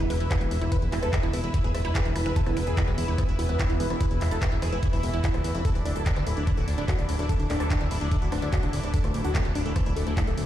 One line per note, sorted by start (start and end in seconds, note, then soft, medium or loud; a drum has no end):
0.00 10.46 E3 medium
0.00 0.61 D4 loud
0.00 6.15 E4 medium
0.00 10.46 E4 medium
0.00 0.46 A4 medium
0.00 6.65 B4 loud
0.00 5.65 E5 medium
0.00 0.26 D6 medium
0.00 6.47 E6 medium
0.10 0.17 E1 loud
0.10 0.16 E3 medium
0.10 0.16 B4 medium
0.10 open hi-hat loud
0.20 0.27 E1 medium
0.20 0.26 E3 medium
0.20 closed hi-hat soft
0.31 0.37 B3 medium
0.31 0.40 E4 medium
0.31 kick loud
0.31 cross-stick medium
0.31 clap loud
0.31 closed hi-hat loud
0.41 0.48 E1 medium
0.41 0.47 E3 medium
0.41 0.47 B4 medium
0.41 closed hi-hat soft
0.51 0.58 E1 loud
0.51 0.57 E3 medium
0.51 open hi-hat loud
0.61 0.68 E1 medium
0.61 0.67 E3 medium
0.61 0.71 E4 medium
0.61 cross-stick soft
0.61 closed hi-hat soft
0.72 0.78 B4 medium
0.72 0.78 B4 loud
0.72 kick loud
0.72 closed hi-hat medium
0.82 0.89 E1 medium
0.82 0.88 E4 medium
0.82 closed hi-hat soft
0.92 0.99 E1 loud
0.92 1.02 E4 medium
0.92 0.98 E4 medium
0.92 clap medium
0.92 open hi-hat loud
1.03 1.10 E1 medium
1.03 1.08 A4 loud
1.03 1.09 B4 medium
1.03 cross-stick medium
1.03 closed hi-hat soft
1.13 1.19 E4 medium
1.13 kick loud
1.13 clap loud
1.13 closed hi-hat loud
1.23 1.30 E1 medium
1.23 1.32 E4 medium
1.23 1.29 E4 medium
1.23 closed hi-hat soft
1.33 1.40 E1 loud
1.33 1.39 E4 loud
1.33 1.40 B4 medium
1.33 cross-stick soft
1.33 open hi-hat loud
1.44 1.51 E1 medium
1.44 1.50 E4 medium
1.44 closed hi-hat soft
1.54 1.63 E4 medium
1.54 1.60 E4 medium
1.54 kick loud
1.54 closed hi-hat loud
1.64 1.71 E1 medium
1.64 1.70 G#4 medium
1.64 1.70 B4 medium
1.64 closed hi-hat soft
1.75 1.81 E1 loud
1.75 1.80 E4 medium
1.75 cross-stick medium
1.75 open hi-hat loud
1.85 1.92 E1 medium
1.85 1.91 E4 medium
1.85 1.94 E4 medium
1.85 closed hi-hat soft
1.95 2.01 G#4 medium
1.95 2.01 B4 medium
1.95 kick loud
1.95 clap loud
1.95 closed hi-hat medium
2.05 2.12 E1 medium
2.05 2.11 E4 medium
2.05 cross-stick soft
2.05 closed hi-hat soft
2.16 2.23 E1 loud
2.16 2.21 E4 medium
2.16 2.25 E4 medium
2.16 open hi-hat loud
2.26 2.33 E1 medium
2.26 2.32 E4 medium
2.26 2.32 B4 medium
2.26 closed hi-hat soft
2.36 2.42 A4 loud
2.36 kick loud
2.36 closed hi-hat medium
2.46 2.53 E1 medium
2.46 2.52 B3 medium
2.46 2.56 E4 medium
2.46 cross-stick medium
2.46 closed hi-hat soft
2.57 2.64 E1 loud
2.57 2.63 B3 medium
2.57 2.63 B4 medium
2.57 open hi-hat loud
2.67 2.74 E1 medium
2.67 2.73 G#4 medium
2.67 closed hi-hat soft
2.77 2.83 B3 medium
2.77 2.86 E4 medium
2.77 kick loud
2.77 cross-stick soft
2.77 clap loud
2.77 closed hi-hat medium
2.88 2.94 E1 medium
2.88 2.93 B3 medium
2.88 2.94 B4 medium
2.88 closed hi-hat soft
2.98 3.05 E1 loud
2.98 3.04 E4 loud
2.98 open hi-hat loud
3.08 3.15 E1 medium
3.08 3.14 B3 medium
3.08 3.17 E4 medium
3.08 closed hi-hat soft
3.18 3.24 B3 medium
3.18 3.24 B4 medium
3.18 kick loud
3.18 cross-stick medium
3.18 closed hi-hat medium
3.29 3.36 E1 medium
3.29 3.35 E4 medium
3.29 closed hi-hat soft
3.39 3.46 E1 loud
3.39 3.45 B3 medium
3.39 3.48 E4 medium
3.39 open hi-hat loud
3.49 3.56 E1 medium
3.49 3.55 B3 medium
3.49 3.55 B4 medium
3.49 cross-stick soft
3.49 closed hi-hat soft
3.59 3.65 E4 loud
3.59 kick loud
3.59 clap loud
3.59 closed hi-hat medium
3.70 3.77 E1 medium
3.70 3.76 B3 medium
3.70 3.79 E4 medium
3.70 closed hi-hat soft
3.80 3.87 E1 loud
3.80 3.86 B3 medium
3.80 3.86 B4 medium
3.80 open hi-hat loud
3.90 3.97 E1 loud
3.90 3.96 B3 medium
3.90 cross-stick medium
3.90 closed hi-hat soft
4.00 4.10 E4 medium
4.00 4.06 B4 loud
4.00 kick loud
4.00 closed hi-hat loud
4.11 4.18 E1 medium
4.11 4.17 E4 medium
4.11 4.17 B4 medium
4.11 closed hi-hat soft
4.21 4.28 E1 loud
4.21 4.27 E4 medium
4.21 cross-stick soft
4.21 clap medium
4.21 open hi-hat loud
4.31 4.38 E1 medium
4.31 4.41 E4 medium
4.31 4.37 A4 loud
4.31 closed hi-hat soft
4.42 4.47 E4 medium
4.42 4.48 B4 medium
4.42 kick loud
4.42 clap loud
4.42 closed hi-hat medium
4.52 4.59 E1 medium
4.52 4.58 E4 medium
4.52 closed hi-hat soft
4.62 4.69 E1 loud
4.62 4.71 E4 medium
4.62 4.68 G#4 loud
4.62 cross-stick medium
4.62 open hi-hat loud
4.72 4.79 E1 medium
4.72 4.78 E4 medium
4.72 4.79 B4 medium
4.72 closed hi-hat soft
4.83 4.89 E4 medium
4.83 kick loud
4.83 closed hi-hat loud
4.93 5.00 E1 medium
4.93 5.02 E4 medium
4.93 4.99 E4 medium
4.93 cross-stick soft
4.93 open hi-hat medium
5.03 5.10 E1 loud
5.03 5.09 E4 medium
5.03 open hi-hat loud
5.14 5.21 E1 medium
5.14 5.17 E4 medium
5.14 5.19 E4 medium
5.14 closed hi-hat soft
5.24 5.30 E4 loud
5.24 5.30 E4 medium
5.24 kick loud
5.24 clap loud
5.24 closed hi-hat medium
5.34 5.41 D1 medium
5.34 5.40 E4 medium
5.34 cross-stick medium
5.34 closed hi-hat soft
5.44 5.51 E2 loud
5.44 5.51 E4 medium
5.44 5.50 E4 medium
5.44 open hi-hat loud
5.55 5.62 F1 loud
5.55 5.61 E4 medium
5.55 closed hi-hat soft
5.65 10.46 D4 loud
5.65 5.71 A4 medium
5.65 5.71 A4 loud
5.65 kick loud
5.65 closed hi-hat medium
5.71 10.46 A4 medium
5.71 10.46 D6 medium
5.75 5.82 D1 medium
5.75 5.81 D4 medium
5.75 cross-stick soft
5.75 closed hi-hat soft
5.85 5.92 D1 loud
5.85 5.95 D4 medium
5.85 5.91 D4 medium
5.85 open hi-hat loud
5.96 6.03 D1 medium
5.96 6.02 A4 medium
5.96 closed hi-hat soft
6.01 10.46 E5 medium
6.06 6.12 D4 medium
6.06 kick loud
6.06 clap loud
6.06 closed hi-hat loud
6.16 6.23 D1 medium
6.16 6.25 D4 medium
6.16 6.22 D4 medium
6.16 cross-stick medium
6.16 closed hi-hat soft
6.27 6.34 D1 loud
6.27 6.32 E4 loud
6.27 6.33 A4 medium
6.27 open hi-hat loud
6.37 6.44 D1 medium
6.37 6.43 D4 medium
6.37 closed hi-hat soft
6.47 6.56 D4 medium
6.47 6.53 D4 medium
6.47 kick loud
6.47 cross-stick soft
6.47 closed hi-hat medium
6.57 6.64 D1 medium
6.57 6.63 F#4 medium
6.57 6.64 A4 medium
6.57 closed hi-hat soft
6.68 6.75 D1 loud
6.68 6.74 D4 medium
6.68 open hi-hat loud
6.78 6.85 D1 medium
6.78 6.87 D4 medium
6.78 6.84 D4 medium
6.78 closed hi-hat soft
6.88 6.94 F#4 medium
6.88 6.94 A4 medium
6.88 kick loud
6.88 cross-stick medium
6.88 clap loud
6.88 closed hi-hat medium
6.99 7.05 D1 medium
6.99 7.04 D4 medium
6.99 closed hi-hat soft
7.09 7.16 D1 medium
7.09 7.18 D4 medium
7.09 7.15 D4 medium
7.09 open hi-hat loud
7.19 7.26 D1 loud
7.19 7.25 D4 medium
7.19 7.25 A4 medium
7.19 cross-stick soft
7.19 closed hi-hat soft
7.29 7.35 A4 loud
7.29 kick loud
7.29 closed hi-hat loud
7.40 7.47 D1 medium
7.40 7.49 D4 medium
7.40 7.45 D4 medium
7.40 closed hi-hat soft
7.50 7.57 D1 loud
7.50 7.56 D4 medium
7.50 7.56 A4 medium
7.50 clap medium
7.50 open hi-hat loud
7.60 7.67 D1 medium
7.60 7.66 A4 medium
7.60 cross-stick medium
7.60 closed hi-hat soft
7.70 7.80 D4 medium
7.70 7.76 D4 medium
7.70 kick loud
7.70 clap loud
7.70 closed hi-hat loud
7.81 7.88 D1 medium
7.81 7.87 D4 medium
7.81 7.87 A4 medium
7.81 closed hi-hat soft
7.91 7.98 D1 medium
7.91 7.97 E4 loud
7.91 cross-stick soft
7.91 open hi-hat loud
8.01 8.08 D1 loud
8.01 8.10 D4 medium
8.01 8.07 D4 medium
8.01 closed hi-hat soft
8.11 8.17 D4 medium
8.11 8.18 A4 medium
8.11 kick loud
8.11 closed hi-hat loud
8.22 8.29 D1 medium
8.22 8.28 F#4 medium
8.22 closed hi-hat soft
8.32 8.39 D1 loud
8.32 8.38 D4 medium
8.32 8.41 D4 medium
8.32 cross-stick medium
8.32 open hi-hat loud
8.42 8.49 D1 medium
8.42 8.48 D4 medium
8.42 8.48 A4 medium
8.42 closed hi-hat soft
8.53 8.58 F#4 medium
8.53 kick loud
8.53 clap loud
8.53 closed hi-hat medium
8.63 8.70 D1 medium
8.63 8.69 D4 medium
8.63 8.72 D4 medium
8.63 cross-stick soft
8.63 closed hi-hat soft
8.73 8.80 D1 loud
8.73 8.79 D4 medium
8.73 8.79 A4 medium
8.73 open hi-hat loud
8.83 8.90 D1 medium
8.83 8.89 D4 medium
8.83 closed hi-hat soft
8.94 9.03 D4 medium
8.94 9.00 A4 loud
8.94 kick loud
8.94 closed hi-hat loud
9.04 9.11 D1 medium
9.04 9.10 A3 medium
9.04 9.10 A4 medium
9.04 cross-stick medium
9.04 closed hi-hat soft
9.14 9.21 D1 loud
9.14 9.20 A3 medium
9.14 open hi-hat loud
9.24 9.31 D1 medium
9.24 9.34 D4 medium
9.24 9.30 F#4 loud
9.24 closed hi-hat soft
9.35 9.41 A3 medium
9.35 9.41 A4 medium
9.35 kick loud
9.35 cross-stick soft
9.35 clap loud
9.35 closed hi-hat loud
9.45 9.52 D1 medium
9.45 9.51 A3 medium
9.45 closed hi-hat soft
9.55 9.62 D1 loud
9.55 9.61 D4 loud
9.55 9.65 D4 medium
9.55 open hi-hat loud
9.66 9.73 D1 medium
9.66 9.71 A3 medium
9.66 9.72 A4 medium
9.66 closed hi-hat soft
9.76 9.82 A3 medium
9.76 kick loud
9.76 cross-stick medium
9.76 closed hi-hat loud
9.86 9.93 D1 medium
9.86 9.95 D4 medium
9.86 9.92 E4 loud
9.86 closed hi-hat soft
9.96 10.03 D1 loud
9.96 10.02 A3 medium
9.96 10.03 A4 medium
9.96 open hi-hat loud
10.07 10.14 D1 medium
10.07 10.13 A3 medium
10.07 cross-stick soft
10.07 closed hi-hat soft
10.17 10.26 D4 medium
10.17 10.23 E4 medium
10.17 kick loud
10.17 clap loud
10.17 closed hi-hat loud
10.27 10.34 D1 medium
10.27 10.33 A3 medium
10.27 10.33 A4 medium
10.27 closed hi-hat soft
10.38 10.44 D1 loud
10.38 10.43 A3 medium
10.38 open hi-hat loud